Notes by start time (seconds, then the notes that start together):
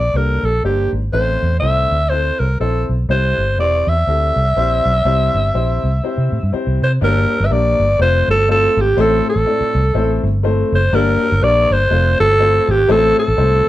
Already playing: D5
0.14 C2 A#3 D4 G4 A4 A#4
0.43 A#1 A4
0.63 G1 A#3 D4 G4 C5
0.92 G#1
1.12 A1 A2 C4 E4 A4 C5
1.43 E2
1.60 C2 C4 E4 A4 C5 E5
1.91 D2
2.09 C4 E4 A4 C5
2.39 C2 A#4
2.60 A#1 C4 E4 A4 C5
2.89 B1
3.09 C2 C3 C4 E4 G4 C5
3.38 G1
3.58 E1 C4 E4 G4 C5 D5
3.87 E2 E5
4.07 D2 C4 E4 G4 A4
4.36 C2
4.56 A#1 C4 E4 G4 C5
4.85 B1
5.05 C2 C3 C4 E4 G4 C5
5.34 G1
5.54 A#1 C4 E4 G4 C5
5.84 C2
6.03 C4 E4 G4 C5
6.18 C3
6.32 A2
6.43 G2
6.52 C4 E4 G4 C5, muted fingered electric bass stroke
6.67 C2
6.82 C3 C5
7.01 G1 G2 A#3 D4 G4 A#4 D5
7.40 G1
7.46 E5
7.50 A#1 A#3 D4 G4 A#4 D5
7.79 G1
7.99 F1 A3 C4 F4 A4 C5
8.28 G1 A4
8.48 A3 C4 F4 A4 C5
8.77 G#1 G4
8.97 A1 A2 A3 C4 E4 A4 C5
9.29 A4
9.36 A1
9.46 A3 C4 E4 A4 D5
9.60 muted fingered electric bass stroke
9.75 C2
9.94 A1 A3 C4 E4 A4 C5
10.23 G1
10.43 A3 C4 E4 A4 C5
10.72 F#1 C5
10.93 G1 G2 A#3 D4 G4 A#4 D5
11.32 G1
11.41 A#1 A#3 D4 G4 A#4 D5
11.71 G1 C5
11.90 F1 A3 C4 F4 A4 C5
12.20 G1 A4
12.39 A3 C4 F4 A4 C5
12.68 G#1 G4
12.88 A1 A2 A3 C4 E4 A4 C5
13.19 A4
13.28 A1
13.37 C2 A3 C4 E4 A4 C5